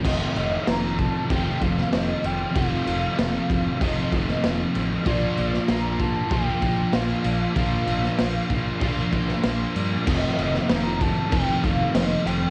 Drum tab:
CC |x-x-x-x-x-x-x-x-|x-x-x-x-x-x-x-x-|x-x-x-x-x-x-x-x-|x-x-x-x-x-x-x-x-|
SD |----o------oo---|----o------oo---|---oo-------o---|---oo------oo---|
BD |o-----o-o-o-----|o-----o-o-o-----|o-----o-o-o-----|o-----o-o-o-----|

CC |x-x-x-x-x-x-x-x-|
SD |---oo-------o---|
BD |o-----o-o-o-----|